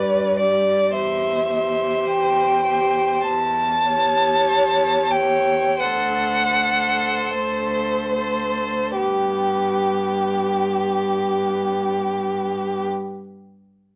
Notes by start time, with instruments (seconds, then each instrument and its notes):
Already playing: cello G2, viola G4, violin B4 D5
0.37 viola G4, violin D5
0.92 cello E2, viola G4, violin C5 E5
1.49 viola G4, violin C5
2.07 cello E2, violin G5
2.67 viola G4, violin C5
3.25 cello E2, violin A5
3.86 viola G4, violin C#5
4.47 cello E2
5.11 viola G4, violin C#5 G5
5.80 cello D2, viola A4, violin C5 F#5
6.53 viola A4, violin C5
7.31 cello D2, violin C5
8.16 viola A4, violin C5
8.98 cello G2, viola B3, violin G4